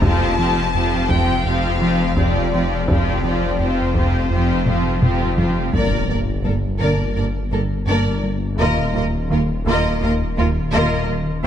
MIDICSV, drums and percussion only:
0, 0, Header, 1, 2, 480
1, 0, Start_track
1, 0, Key_signature, -2, "minor"
1, 0, Tempo, 714286
1, 16, Time_signature, 4, 2, 24, 8
1, 7706, End_track
2, 0, Start_track
2, 0, Title_t, "Taiko and cinematic ensemble drums"
2, 12, Note_on_c, 9, 41, 85
2, 80, Note_off_c, 9, 41, 0
2, 732, Note_on_c, 9, 41, 65
2, 799, Note_off_c, 9, 41, 0
2, 1456, Note_on_c, 9, 41, 72
2, 1523, Note_off_c, 9, 41, 0
2, 1935, Note_on_c, 9, 41, 78
2, 2003, Note_off_c, 9, 41, 0
2, 2654, Note_on_c, 9, 41, 62
2, 2721, Note_off_c, 9, 41, 0
2, 3132, Note_on_c, 9, 45, 65
2, 3199, Note_off_c, 9, 45, 0
2, 3374, Note_on_c, 9, 45, 74
2, 3441, Note_off_c, 9, 45, 0
2, 3613, Note_on_c, 9, 43, 69
2, 3681, Note_off_c, 9, 43, 0
2, 3855, Note_on_c, 9, 41, 42
2, 3923, Note_off_c, 9, 41, 0
2, 4576, Note_on_c, 9, 41, 27
2, 4644, Note_off_c, 9, 41, 0
2, 7706, End_track
0, 0, End_of_file